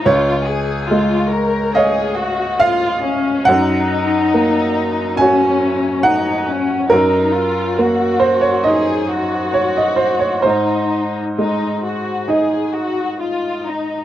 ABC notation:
X:1
M:4/4
L:1/16
Q:1/4=69
K:Db
V:1 name="Upright piano"
d8 e4 f4 | g8 a4 g4 | B6 c d e4 d e c d | c12 z4 |]
V:2 name="Upright piano"
D,,4 A,4 [df]8 | G,,4 B,4 [Gd]8 | G,,4 B,4 E8 | A,,4 A,4 [Ee]8 |]
V:3 name="Violin section"
F2 A2 F2 B2 A2 G2 F2 D2 | E8 D4 E2 D2 | E2 F2 G4 A2 G6 | E4 E2 G2 A2 G2 F2 E2 |]